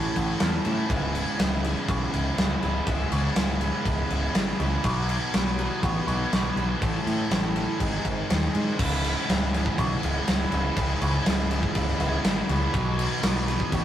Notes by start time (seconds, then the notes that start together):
Already playing: E3 A3 C#4 E4 A4
0.16 A1, kick, crash
0.40 E2 A3 C#4 E4 A4, snare, crash
0.64 A2 A3 C#4 E4 A4, crash
0.89 C#1 C#2 G#2 C#3 G#3 B3 E4, kick, crash
1.15 crash
1.38 C#1 C#2 G#2 C#3 G#3 B3 E4, snare, crash
1.52 snare
1.62 C#3 G#3 B3 E4, crash
1.88 B1, kick, crash
2.13 C#1, crash
2.36 C#1 C#3 G#3 B3 E4, snare, crash
2.61 C#1 C#3 G#3 B3 E4, crash
2.86 C#1 C#2 G#2 C#3 G#3 B3 E4, kick, crash
3.12 C#2, crash
3.35 C#1 C#2 G#2 C#3 G#3 B3 E4, snare, crash
3.60 C#3 G#3 B3 E4, crash
3.85 C#1, kick, crash
4.10 C#1, crash
4.34 G#1 C#3 G#3 B3 E4, snare, crash
4.59 C#2 C#3 G#3 B3 E4, crash
4.83 B1 B2 F#3 B3 D#4 F#4 B4, kick, crash
5.09 crash
5.33 B1 B2 F#3 B3 D#4 F#4 B4, snare, crash
5.58 B3 D#4 F#4 B4, crash
5.83 A1, kick, crash
6.07 B1, crash
6.32 B1 B3 D#4 F#4 B4, snare, crash
6.56 B1 B3 D#4 F#4 B4, crash
6.80 A1 A2 E3 A3 C#4 E4 A4, kick, crash
7.07 A2, crash
7.30 A1 A2 E3 A3 C#4 E4, snare, crash
7.34 A4
7.54 A3 C#4 E4 A4, crash
7.78 G#1 G#2 D#3 G#3 C4 D#4 G#4, kick, crash
8.05 G#1, kick, crash
8.29 D#2 G#3 C4 D#4 G#4, snare, crash
8.53 G#2 G#3 C4 D#4 G#4, crash
8.77 C#1 C#2 G#2 C#3 G#3 B3 E4, kick, crash
9.04 crash
9.27 C#1 C#2 G#2 C#3 G#3 B3 E4, snare, crash
9.52 C#3 G#3 B3 E4, snare, crash
9.66 kick
9.78 B1, kick, crash
10.03 C#1, crash
10.26 C#1 C#3 G#3 B3 E4, snare, crash
10.51 C#1 C#3 G#3 B3 E4, crash
10.76 C#1 C#2 G#2 C#3 G#3 B3 E4, kick, crash
11.02 C#2, crash
11.25 C#1 C#2 G#2 C#3 G#3 B3 E4, snare, crash
11.50 C#3 G#3 B3 E4, crash
11.63 kick
11.75 C#1, kick, crash
11.88 snare
11.99 C#1, crash
12.24 G#1 C#3 G#3 B3 E4, snare, crash
12.49 C#2 C#3 G#3 B3 E4, crash
12.73 B1 B2 F#3 B3 D#4 F#4 B4, kick, crash
12.99 crash
13.22 B1 B2 F#3 B3 D#4 F#4 B4, snare, crash
13.47 B3 D#4 F#4 B4, snare, crash
13.60 kick
13.72 A1, kick, crash